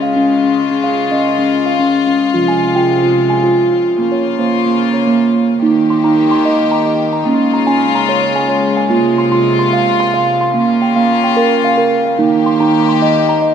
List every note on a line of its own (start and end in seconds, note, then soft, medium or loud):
0.00 2.32 C#3 medium
0.00 2.32 G#3 medium
0.00 3.95 F4 medium
0.00 0.43 F5 soft
0.16 0.42 C#4 medium
0.43 0.70 C#4 medium
0.71 1.10 C#4 medium
0.84 1.25 F5 medium
1.11 1.38 C#4 medium
1.11 1.52 D#5 medium
1.39 1.66 C#4 medium
1.66 2.07 F5 medium
1.79 2.06 C#4 medium
2.07 2.34 C#4 medium
2.33 3.96 C3 medium
2.33 3.95 F3 medium
2.33 3.96 G#3 medium
2.33 2.61 F4 medium
2.48 2.89 G#5 medium
2.75 3.02 F4 medium
2.75 3.16 G5 medium
3.03 3.30 F4 medium
3.30 3.71 G#5 medium
3.44 3.71 F4 medium
3.72 3.99 F4 medium
3.98 5.60 C#3 medium
3.98 5.60 A#3 medium
3.98 4.38 A#3 medium
3.98 5.60 F4 medium
4.12 4.52 C#5 medium
4.39 4.65 A#3 medium
4.39 4.80 C5 medium
4.66 4.93 A#3 medium
4.93 5.34 C#5 medium
5.07 5.33 A#3 medium
5.34 5.61 A#3 medium
5.62 7.24 D#3 medium
5.62 7.22 A#3 medium
5.62 7.25 A#3 medium
5.62 5.89 D#4 medium
5.62 7.24 G4 medium
5.90 6.30 C6 medium
6.04 6.31 D#4 medium
6.04 6.44 A#5 medium
6.31 6.72 C6 medium
6.45 6.72 D#5 medium
6.72 7.12 A#5 medium
6.86 6.88 D#5 medium
7.13 7.40 A#5 medium
7.24 8.88 C#3 medium
7.24 10.50 G#3 medium
7.24 8.87 A#3 medium
7.24 7.53 C#4 medium
7.24 8.87 F4 medium
7.54 7.94 A#5 medium
7.67 7.95 C#4 medium
7.67 8.08 G#5 medium
7.95 8.36 A#5 medium
8.09 8.36 C#5 medium
8.36 8.76 G#5 medium
8.49 8.51 C#5 medium
8.77 9.04 G#5 medium
8.90 10.53 C3 medium
8.90 10.51 A#3 medium
8.90 9.17 F4 medium
8.90 10.53 F4 medium
9.18 9.31 C6 medium
9.32 9.59 F4 medium
9.32 9.58 C6 medium
9.59 9.99 C6 medium
9.73 10.00 F5 medium
10.00 10.40 C6 medium
10.14 10.16 F5 medium
10.41 10.68 C6 medium
10.54 12.17 C#3 medium
10.54 10.95 A#3 medium
10.54 12.17 A#3 medium
10.54 12.17 F4 medium
10.82 11.23 G5 medium
10.96 11.23 A#3 medium
10.96 11.37 F5 medium
11.24 11.64 G5 medium
11.37 11.64 A#4 medium
11.64 12.04 F5 medium
11.78 11.80 A#4 medium
12.05 12.33 F5 medium
12.18 13.54 D#3 medium
12.18 13.54 A#3 medium
12.18 12.46 D#4 medium
12.18 13.54 G4 medium
12.46 12.88 C6 medium
12.60 12.88 D#4 medium
12.60 13.01 A#5 medium
12.89 13.29 C6 medium
13.02 13.29 D#5 medium
13.29 13.54 A#5 medium
13.42 13.44 D#5 medium